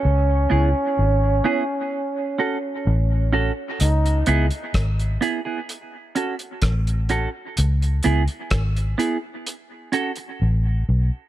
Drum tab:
HH |----------------|xxxxxxx-x-xxxxx-|xxxxxxx-x-xx----|
SD |----------------|----r-------r---|----r-----------|
BD |----------------|----o-------o---|----o-----------|